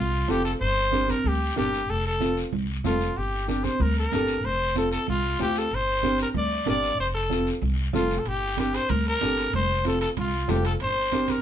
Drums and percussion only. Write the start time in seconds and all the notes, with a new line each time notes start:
0.29 high conga, short guiro
0.45 short guiro
0.61 long guiro
0.92 high conga, short guiro
1.08 high conga, short guiro
1.24 low conga, long guiro
1.57 high conga, short guiro
1.74 short guiro
1.89 long guiro
2.21 high conga, short guiro
2.37 short guiro
2.53 low conga, long guiro
2.84 high conga, low conga, short guiro
3.01 short guiro
3.16 long guiro
3.48 high conga, short guiro
3.64 high conga, short guiro
3.80 low conga, long guiro
4.12 high conga, short guiro
4.27 short guiro
4.43 long guiro
4.75 high conga, short guiro
4.92 short guiro
5.07 low conga, long guiro
5.39 high conga, short guiro
5.55 short guiro
5.71 long guiro
6.03 high conga, short guiro
6.18 short guiro
6.34 low conga, long guiro
6.66 high conga, short guiro
6.83 short guiro
7.00 long guiro
7.30 high conga, short guiro
7.47 short guiro
7.62 low conga, long guiro
7.93 high conga, low conga, short guiro
8.11 short guiro
8.26 high timbale, long guiro
8.57 high conga, high timbale, short guiro
8.74 high timbale, short guiro
8.89 low conga, high timbale, long guiro
9.21 high conga, high timbale, short guiro
9.38 high timbale, short guiro
9.53 low conga, high timbale, long guiro
9.85 high conga, high timbale, short guiro
10.01 high timbale, short guiro
10.17 low conga, high timbale, long guiro
10.49 high conga, low conga, high timbale, low timbale, short guiro
10.65 high timbale, short guiro
10.80 high timbale, long guiro
11.12 high conga, high timbale, short guiro
11.28 high conga, high timbale, short guiro